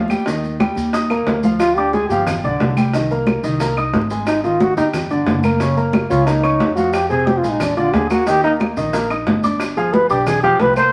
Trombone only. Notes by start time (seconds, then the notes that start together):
1.60 F4
1.76 G4
1.93 G#4
2.09 G4
4.27 D#4
4.44 F4
4.61 F#4
4.77 D#4
6.10 F4
6.27 D#4
6.76 F#4
6.93 G4
7.10 G#4
7.27 G4
7.38 F4
7.50 D#4
7.61 D4
7.77 F4
7.94 G#4
8.11 F#4
8.28 G4
8.44 D#4
9.77 G#4
9.93 B4
10.10 G4
10.27 G#4
10.43 G4
10.61 B4
10.77 C5